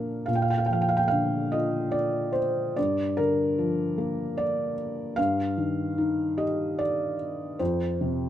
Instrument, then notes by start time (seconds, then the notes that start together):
felt piano
Already playing: A#2 F3 A#3 D4 A#4
0.26 A#2 F5
0.35 G5
0.42 F5
0.50 G5
0.58 F5
0.66 F3 G5
0.73 F5
0.82 G5
0.89 F5
0.97 G5
1.08 D3 F5
1.52 F4 D#5
1.92 D5
2.33 C5
2.76 G2 D5
3.17 D3 A#4
3.59 F3
3.98 A#3
4.37 D5
5.16 G2 F5
5.57 D#3
5.98 D#4
6.38 G4 D#5
6.79 D5
7.59 F2 C5
8.01 C3